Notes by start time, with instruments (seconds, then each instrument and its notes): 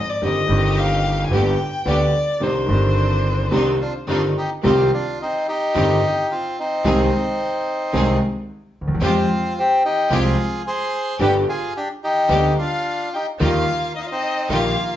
Already playing: violin D#5
0.10 violin D5
0.22 grand piano G1 G2 D#3 G3 C4 G4, upright bass G1, string section C4 D#4 G4, violin D#5
0.48 upright bass G1, grand piano G1 G2 D#3 G3 C4 G4, string section C4 D#4 G4
0.78 violin F5
1.26 violin G#5
1.31 grand piano G1 G2 D3 G3 B3 G4, upright bass G1, string section B3 D4 G4, violin G5
1.85 grand piano D2 D3 G3 B3 G4, upright bass D2, string section B3 D4 G4, violin D5
2.40 grand piano C2 C3 D#3 C4 D4 G4, upright bass C2, string section C4 D4 D#4, violin C5
2.66 grand piano G1 G2 D#3 C4 D4, upright bass G1, string section C4 D4
2.70 grand piano G4
3.51 grand piano C2 C3 D#3 C4 D4 G4, string section C4 D4 D#4
3.81 bandoneon D4 F4
4.07 grand piano G1 G2 D#3 C4 D4 G4, string section C4 D4 D#4, bandoneon D4 F4
4.38 bandoneon D#4 G4
4.63 grand piano C2 C3 D#3 G3 C4 G4, upright bass C2, string section C4 D#4 G4, bandoneon C4 F4
4.94 bandoneon D4 F4
5.22 bandoneon C4 D#4
5.48 bandoneon D#4 G4
5.75 grand piano G1 G2 D#3 G3 C4 G4, upright bass G1, string section C4 D#4 G4
6.31 bandoneon C4 F4
6.59 bandoneon C4 D#4
6.85 upright bass C2, grand piano C2 C3 D#3 G#3 C4 G#4, string section C4 D#4 G#4
7.93 upright bass C2, grand piano C2 C3 D#3 G#3 C4 G#4, string section C4 D#4 G#4
8.81 upright bass D2, grand piano D2
8.88 grand piano D#2, upright bass D#2
8.95 grand piano E2, upright bass E2
9.01 upright bass F2, grand piano F2 F3 G#3 C4 G4, string section G#3 F4 G4, bandoneon C4 F4
9.59 bandoneon C4 G4
9.85 bandoneon D#4 G4
10.10 upright bass C2, grand piano C2 C3 F3 G#3 C4 G4, string section G#3 F4 G4, bandoneon F4 G#4
10.67 bandoneon G#4 C5
11.19 upright bass G1, grand piano G1 G2 D3 G3 B3 G4, string section B3 D4 G4, bandoneon G4 B4
11.49 bandoneon F4 G#4
11.77 bandoneon D4 G4
12.04 bandoneon D#4 G4
12.28 grand piano D2 D3 G3 B3 G4, upright bass D2, string section B3 D4 G4
12.58 bandoneon D4 F4, violin F5
13.14 bandoneon D#4 G4, violin G5
13.40 grand piano D#2 D#3 G3 A#3 F4, upright bass D#2, bandoneon A#3 F4, string section D#4 F4 G4, violin F5
13.96 bandoneon A#3 D#4, violin D#5
14.02 bandoneon F4, violin F5
14.10 bandoneon C4 D#4, violin D#5
14.49 upright bass A#1, grand piano A#1 A#2 D#3 G3 A#3 F4, bandoneon A#3 F4, string section D#4 F4 G4, violin F5